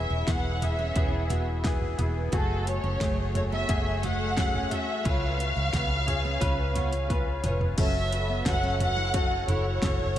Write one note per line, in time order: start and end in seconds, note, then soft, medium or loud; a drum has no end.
0.00 0.58 E3 medium
0.00 0.28 B3 medium
0.00 0.29 E4 medium
0.00 0.29 G#4 loud
0.00 0.25 E5 medium
0.10 0.27 E1 medium
0.10 0.26 E4 medium
0.28 0.92 E1 medium
0.28 0.44 B3 medium
0.28 0.54 B3 medium
0.28 0.54 E4 medium
0.28 0.54 G#4 medium
0.28 0.62 F#5 medium
0.28 kick loud
0.28 snare medium
0.28 closed hi-hat medium
0.62 0.88 B3 medium
0.62 0.88 E4 medium
0.62 0.88 G#4 medium
0.62 1.30 E5 medium
0.62 closed hi-hat medium
0.62 floor tom medium
0.79 1.11 C#4 medium
0.96 1.94 E1 loud
0.96 1.22 B3 medium
0.96 1.22 E4 medium
0.96 1.23 G#4 loud
0.96 kick medium
0.96 closed hi-hat medium
1.29 1.46 B3 medium
1.29 1.56 B3 medium
1.29 1.56 E4 medium
1.29 1.56 F#4 medium
1.29 closed hi-hat medium
1.29 floor tom medium
1.64 1.90 B3 medium
1.64 1.90 E4 medium
1.64 1.91 G#4 medium
1.64 kick loud
1.64 snare loud
1.64 closed hi-hat medium
1.82 floor tom medium
1.98 2.30 E1 medium
1.98 2.24 B3 medium
1.98 2.24 E4 medium
1.98 2.25 G#4 medium
1.98 closed hi-hat medium
1.98 floor tom medium
2.32 2.80 F#1 loud
2.32 2.58 A3 medium
2.32 2.64 F#4 loud
2.32 2.58 F#4 medium
2.32 2.59 G#4 medium
2.32 2.64 A4 medium
2.32 kick loud
2.32 closed hi-hat loud
2.67 2.92 A3 medium
2.67 2.93 F#4 medium
2.67 2.93 G#4 medium
2.67 3.34 C#5 medium
2.67 closed hi-hat medium
2.84 2.99 F#1 medium
2.84 3.00 C#4 medium
3.00 3.65 F#1 medium
3.00 3.17 A3 medium
3.00 3.26 A3 medium
3.00 3.27 F#4 medium
3.00 3.27 G#4 medium
3.00 kick loud
3.00 snare medium
3.00 closed hi-hat medium
3.34 3.60 A3 medium
3.34 3.61 F#4 medium
3.34 3.61 A4 medium
3.34 3.43 C#5 medium
3.34 closed hi-hat medium
3.34 floor tom medium
3.52 3.84 B3 medium
3.52 4.00 E5 loud
3.69 4.67 F#1 medium
3.69 3.95 A3 loud
3.69 3.95 F#4 medium
3.69 3.95 G#4 loud
3.69 kick loud
3.69 closed hi-hat medium
4.03 4.19 A3 medium
4.03 4.29 A3 medium
4.03 4.29 F#4 medium
4.03 4.29 G#4 medium
4.03 4.72 F#5 loud
4.03 closed hi-hat medium
4.03 floor tom medium
4.37 4.63 A3 medium
4.37 4.85 C#4 medium
4.37 4.63 F#4 medium
4.37 4.63 G#4 medium
4.37 kick medium
4.37 snare medium
4.37 closed hi-hat medium
4.55 floor tom medium
4.70 4.96 A3 medium
4.70 4.97 F#4 medium
4.70 4.97 A4 medium
4.70 5.06 E5 loud
4.70 closed hi-hat medium
4.70 floor tom medium
5.04 5.53 C#2 medium
5.04 6.03 C#3 medium
5.04 5.30 C#4 medium
5.04 5.31 F4 medium
5.04 5.37 F4 medium
5.04 5.31 B4 loud
5.04 7.10 F5 loud
5.04 kick loud
5.04 closed hi-hat medium
5.38 5.65 C#4 medium
5.38 5.65 F4 medium
5.38 5.65 B4 medium
5.38 closed hi-hat medium
5.56 5.72 C#2 medium
5.56 5.72 E4 medium
5.73 6.38 C#2 medium
5.73 5.90 B3 medium
5.73 5.99 C#4 medium
5.73 5.99 F4 medium
5.73 5.99 B4 medium
5.73 kick loud
5.73 snare loud
5.73 closed hi-hat medium
6.06 6.33 C#4 medium
6.06 6.33 F4 medium
6.06 6.33 G#4 medium
6.06 closed hi-hat medium
6.06 floor tom medium
6.25 6.57 C#4 medium
6.40 7.40 C#2 loud
6.40 6.67 C#4 loud
6.40 6.67 F4 loud
6.40 6.67 B4 loud
6.40 kick medium
6.40 closed hi-hat medium
6.74 6.92 B3 medium
6.74 7.01 C#4 medium
6.74 7.01 F4 medium
6.74 7.01 C#5 medium
6.74 closed hi-hat medium
6.74 floor tom medium
6.93 closed hi-hat medium
7.08 7.35 C#4 medium
7.08 7.35 F4 medium
7.08 7.36 B4 loud
7.08 kick medium
7.08 closed hi-hat medium
7.08 high tom medium
7.42 7.75 F1 medium
7.42 7.69 C#4 medium
7.42 7.69 F4 medium
7.42 7.70 B4 medium
7.42 7.60 C#5 medium
7.42 closed hi-hat medium
7.42 mid tom medium
7.61 floor tom medium
7.77 8.42 F#1 loud
7.77 8.03 C#4 medium
7.77 7.94 C#4 medium
7.77 8.04 F#4 medium
7.77 8.04 A4 medium
7.77 8.42 E5 medium
7.77 kick loud
7.77 closed hi-hat medium
7.77 crash medium
8.12 8.38 C#4 medium
8.12 8.38 F#4 medium
8.12 8.38 B4 medium
8.12 closed hi-hat medium
8.29 8.45 B3 medium
8.46 9.44 F#1 loud
8.46 8.72 C#4 medium
8.46 8.72 F#4 medium
8.46 8.73 A4 medium
8.46 8.80 F#5 medium
8.46 kick loud
8.46 snare loud
8.46 closed hi-hat medium
8.63 8.79 C#4 medium
8.80 9.06 C#4 medium
8.80 9.06 F#4 medium
8.80 9.07 A4 medium
8.80 9.45 F#5 loud
8.80 closed hi-hat medium
8.80 floor tom medium
8.97 9.13 E4 medium
9.14 9.40 C#4 medium
9.14 9.46 F#4 medium
9.14 9.40 F#4 medium
9.14 9.41 A4 loud
9.14 kick loud
9.14 closed hi-hat medium
9.48 9.80 F#1 medium
9.48 9.74 C#4 medium
9.48 9.64 E4 medium
9.48 9.74 F#4 medium
9.48 9.75 A4 medium
9.48 10.19 C#5 medium
9.48 closed hi-hat medium
9.48 floor tom medium
9.82 10.15 F#1 medium
9.82 10.08 C#4 medium
9.82 10.08 F#4 medium
9.82 10.09 A4 medium
9.82 kick loud
9.82 snare loud
9.82 closed hi-hat medium
9.99 floor tom medium